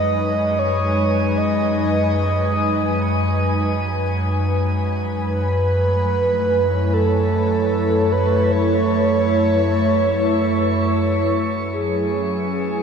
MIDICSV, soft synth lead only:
0, 0, Header, 1, 2, 480
1, 0, Start_track
1, 0, Tempo, 500000
1, 12315, End_track
2, 0, Start_track
2, 0, Title_t, "Soft synth lead"
2, 0, Program_c, 0, 80
2, 0, Note_on_c, 0, 75, 126
2, 565, Note_on_c, 0, 73, 96
2, 579, Note_off_c, 0, 75, 0
2, 1322, Note_on_c, 0, 75, 96
2, 1337, Note_off_c, 0, 73, 0
2, 1708, Note_off_c, 0, 75, 0
2, 1720, Note_on_c, 0, 75, 99
2, 2813, Note_off_c, 0, 75, 0
2, 5125, Note_on_c, 0, 71, 107
2, 6656, Note_on_c, 0, 69, 102
2, 6671, Note_off_c, 0, 71, 0
2, 7794, Note_on_c, 0, 71, 102
2, 7809, Note_off_c, 0, 69, 0
2, 8179, Note_on_c, 0, 73, 122
2, 8193, Note_off_c, 0, 71, 0
2, 10489, Note_off_c, 0, 73, 0
2, 11257, Note_on_c, 0, 68, 89
2, 11994, Note_off_c, 0, 68, 0
2, 12025, Note_on_c, 0, 68, 94
2, 12315, Note_off_c, 0, 68, 0
2, 12315, End_track
0, 0, End_of_file